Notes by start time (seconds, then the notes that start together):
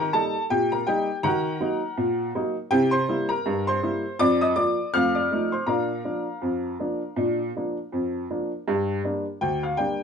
Already playing: A#5
0.00 A#4
0.13 G3 A#3 D#4 A4 A5
0.50 A#2 G4 G5
0.72 A#4 A#5
0.87 G3 A#3 D#4 G4 G5
1.23 D#3 F#4 A#4 F#5 A#5
1.60 F#3 A#3 D#4
1.97 A#2
2.35 F#3 A#3 D#4
2.71 C3 E4 G4 G5
2.91 C5 C6
3.09 G3 A#3 E4
3.29 A#4 A#5
3.46 G2
3.67 C5 C6
3.82 G3 A#3 E4
4.19 F2 D5 D6
4.41 D#5 D#6
4.56 F3 A#3 F4 D5 D6
4.94 F2 A3 F5 F6
5.15 D5 D6
5.31 F3 A3 D#4
5.52 C5 C6
5.67 A#2 D4 A#4 F5 A#5
6.05 F3 A#3 D4
6.42 F2
6.80 F3 A#3 D4
7.16 A#2 D4
7.56 F3 A#3 D4
7.92 F2
8.30 F3 A#3 D4
8.68 G2
9.04 G3 A#3 D4
9.41 D2 G5
9.63 F5
9.77 G3 A#3 D4 G5